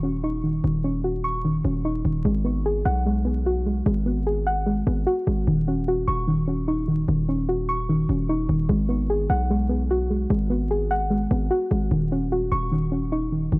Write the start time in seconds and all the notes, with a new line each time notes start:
Already playing: D#1 D#3 F#4 C#6
0.03 C#4
0.24 D#4
0.44 D#3
0.64 D#1 D#3
0.84 C#4
1.04 F#4
1.24 C#6
1.45 D#3
1.65 D#1 C#4
1.85 D#4
2.05 D#1 D#3
2.25 G#1 G#3
2.45 B3
2.66 G#4
2.85 B1 F#5
3.06 G#3
3.25 B3
3.46 F#4
3.66 G#3
3.86 G#1 G#3
4.06 B3
4.27 G#4
4.46 F#5
4.66 G#3
4.87 G#1 B3
5.07 F#4
5.27 G#1 G#3
5.47 D#1 D#3
5.68 C#4
5.88 F#4
6.07 D#1 C#6
6.27 D#3
6.47 C#4
6.68 D#4
6.88 D#3
7.08 D#1 D#3
7.28 C#4
7.48 F#4
7.68 C#6
7.89 D#3
8.09 D#1 C#4
8.29 D#4
8.49 D#1 D#3
8.69 G#1 G#3
8.89 B3
9.10 G#4
9.30 B1 F#5
9.50 G#3
9.69 B3
9.91 F#4
10.10 G#3
10.30 G#1 G#3
10.50 B3
10.71 G#4
10.91 F#5
11.10 G#3
11.31 G#1 B3
11.51 F#4
11.71 G#1 G#3
11.91 D#1 D#3
12.12 C#4
12.32 F#4
12.52 D#1 C#6
12.72 D#3
12.92 C#4
13.12 D#4
13.32 D#3
13.52 D#1 D#3